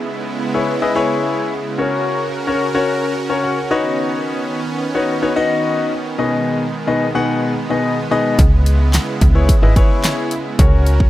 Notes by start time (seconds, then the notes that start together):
Already playing: C#3 G#3 B3 E4
0.54 E4 G#4 B4 C#5
0.82 E4 G#4 B4 D#5
0.95 E4 G#4 B4 C#5
1.78 C#4 F#4 A#4 C#5
2.47 C#4 F#4 A#4 C#5
2.74 C#4 F#4 A#4 C#5
3.29 C#4 F#4 A#4 C#5
3.43 F#5
3.71 D#3 B3 D#4 F#4 B4 C#5 D#5
4.95 D#4 F#4 B4 C#5
5.22 D#4 F#4 B4 C#5
5.36 D#4 F#4 B4 D#5
6.18 B2 G#3 B3 D#4 G#4 B4 D#5
6.87 B2 D#4 G#4 B4 D#5
7.15 B2 D#4 G#4 B4 F#5
7.70 B2 D#4 G#4 B4 D#5
8.11 B2 D#4 G#4 B4 D#5
8.39 C#2 C#3 E4, kick, closed hi-hat
8.66 closed hi-hat
8.94 snare, clap, closed hi-hat
9.21 C#2, kick, closed hi-hat
9.35 E4 G#4 B4 C#5
9.49 kick, closed hi-hat
9.62 G#1 E4 G#4 B4 D#5
9.76 E4 G#4 B4 C#5, kick, closed hi-hat
10.04 snare, clap, closed hi-hat
10.31 closed hi-hat
10.59 C#2 C#3 C#4 F#4 A#4 C#5, kick, closed hi-hat
10.86 closed hi-hat
11.00 kick